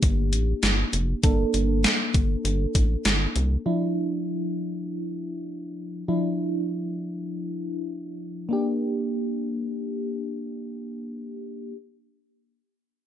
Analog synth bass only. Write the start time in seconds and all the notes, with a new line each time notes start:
0.03 G1
0.33 A1
0.63 G1
0.93 F1
1.24 G1
1.54 G1
2.14 G1
2.45 G1
2.75 A1
3.05 G1
3.36 C2